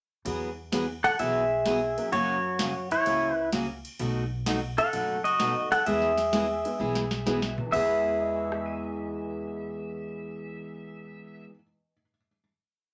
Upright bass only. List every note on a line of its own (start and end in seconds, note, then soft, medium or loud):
0.25 1.00 E2 medium
1.19 1.94 B1 medium
2.12 2.87 F#2 medium
3.06 3.81 C#2 medium
4.00 4.74 B1 medium
4.93 5.68 F#1 medium
5.87 6.62 E2 medium
6.80 7.55 B1 medium
7.73 11.45 E2 loud